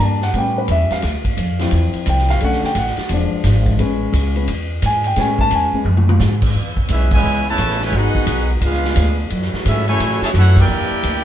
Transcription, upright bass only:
0.00 0.32 G2 medium
0.33 0.67 A2 medium
0.68 0.89 E2 loud
0.91 muted upright bass stroke soft
1.03 1.36 D2 medium
1.37 1.71 F2 medium
1.72 1.93 E2 medium
1.94 muted upright bass stroke soft
2.06 2.40 C2 loud
2.41 2.62 B1 medium
2.63 muted upright bass stroke soft
2.75 2.96 A1 loud
2.97 muted upright bass stroke soft
3.10 3.31 E1 medium
3.32 muted upright bass stroke soft
3.44 3.77 G#1 loud
3.78 4.12 A1 medium
4.12 4.47 C#2 loud
4.48 4.81 E2 medium
4.82 5.16 G#2 loud
5.16 5.50 A2 medium
5.51 5.72 E2 medium
5.73 muted upright bass stroke soft
5.85 6.19 F#2 medium
6.20 6.54 G#2 loud
6.55 6.88 E2 medium
6.90 7.22 B1 medium
7.23 7.57 C#2 medium
7.58 7.92 A1 loud
7.92 8.13 G#1 medium
8.14 muted upright bass stroke soft
8.27 8.60 B1 loud
8.61 8.95 C#2 medium
8.96 9.30 D2 loud
9.30 9.51 F#2 medium
9.53 muted upright bass stroke soft
9.65 9.99 G#2 loud
9.99 10.20 A2 medium
10.22 muted upright bass stroke soft
10.34 10.68 F#2 loud
10.68 10.89 E2 medium
10.91 muted upright bass stroke soft
11.03 11.24 D2 loud

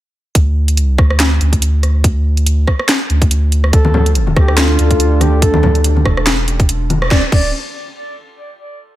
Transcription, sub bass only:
0.35 0.79 D2 loud
0.79 0.97 C#2 loud
0.98 1.39 D2 medium
1.41 2.66 D2 loud
3.10 3.72 D2 loud
3.73 4.35 D2 loud
4.37 4.77 D2 loud
4.79 6.04 D2 loud
6.05 7.10 E1 loud
7.11 7.24 D1 loud
7.32 7.52 D1 loud

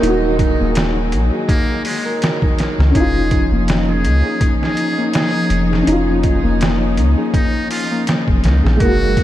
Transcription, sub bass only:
0.02 0.55 D#1 loud
0.60 1.14 D#1 medium
1.13 1.30 A#1 medium
2.79 2.93 C#2 medium
3.51 4.06 F1 medium
4.05 4.23 C#2 medium
5.50 5.83 F1 medium
5.87 6.40 F1 loud
6.44 6.99 F1 medium
6.97 7.15 C#2 medium
8.28 8.45 F1 loud
8.44 8.62 C#2 loud
8.64 8.78 A#1 loud
8.80 9.23 F#1 loud

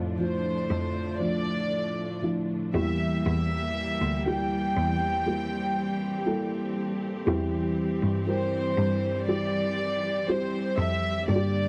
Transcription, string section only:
0.00 2.70 D3 medium
0.00 2.70 F3 medium
0.00 2.70 A3 soft
0.00 2.70 D4 medium
2.73 7.23 E3 medium
2.73 7.23 G3 medium
2.73 4.74 A#3 medium
2.73 11.24 G4 medium
4.76 11.25 C4 medium
7.26 11.24 E3 medium
7.26 11.24 G3 medium
11.30 11.69 D3 medium
11.30 11.69 G3 medium
11.30 11.69 A#3 medium
11.30 11.69 G4 medium

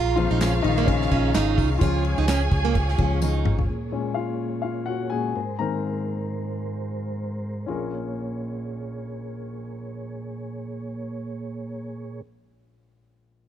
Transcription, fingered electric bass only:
0.00 0.28 A#1 loud
0.31 0.62 A#1 loud
0.65 1.08 A#1 loud
1.11 1.33 A#1 loud
1.35 1.56 G#1 medium
1.58 1.80 C2 medium
1.81 2.15 C#2 loud
2.18 2.49 C#2 medium
2.52 2.95 C#2 loud
2.99 3.42 C#2 loud
3.46 3.67 G#1 medium

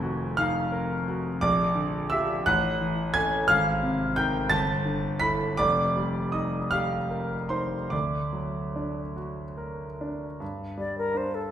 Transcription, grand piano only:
0.00 1.38 F1 medium
0.00 1.38 F2 medium
0.00 0.24 D#3 medium
0.00 0.59 F#4 medium
0.00 0.34 G#5 medium
0.00 0.38 G#6 loud
0.37 0.95 D#4 medium
0.37 1.39 F5 medium
0.37 1.42 F6 loud
0.72 1.28 A#4 medium
1.08 1.43 F#4 medium
1.41 2.44 A#1 medium
1.41 2.07 D5 medium
1.41 2.11 D6 loud
1.75 2.32 D3 medium
2.10 2.43 F4 medium
2.10 2.44 G4 medium
2.10 2.45 E5 medium
2.10 2.46 E6 loud
2.46 3.47 A1 medium
2.46 3.12 F#5 medium
2.46 3.16 F#6 loud
2.81 3.36 E3 medium
3.14 3.46 C#4 medium
3.14 3.47 A4 medium
3.14 3.47 G#5 medium
3.14 3.49 G#6 loud
3.48 4.48 G#1 medium
3.48 4.14 F5 medium
3.48 4.17 F6 loud
3.83 4.38 C3 medium
4.16 4.48 D#4 medium
4.16 4.48 A#4 medium
4.16 4.49 G5 medium
4.16 4.51 G6 loud
4.50 5.54 G1 medium
4.50 5.16 A5 loud
4.50 5.20 A6 loud
4.85 5.43 D3 medium
5.20 5.54 E4 medium
5.20 5.54 A4 medium
5.20 5.55 B5 medium
5.20 5.57 B6 loud
5.57 7.89 F1 medium
5.57 6.31 D5 loud
5.57 6.34 D6 loud
5.97 6.58 G3 medium
6.32 6.96 D#4 medium
6.32 6.70 D#5 medium
6.32 6.72 D#6 medium
6.71 7.36 G4 medium
6.71 7.48 F5 medium
6.71 7.51 F6 loud
7.11 7.76 A#4 medium
7.49 7.92 D#4 medium
7.49 7.89 C5 medium
7.49 7.92 C6 medium
7.90 10.36 D2 medium
7.90 9.14 D5 medium
7.90 9.17 D6 medium
8.33 9.01 F#3 soft
8.76 9.43 D4 medium
9.16 9.84 F#4 medium
9.57 10.25 A#4 medium
10.01 10.41 D4 soft
10.40 11.51 G2 medium
10.78 11.37 G3 soft
11.14 11.51 D4 soft

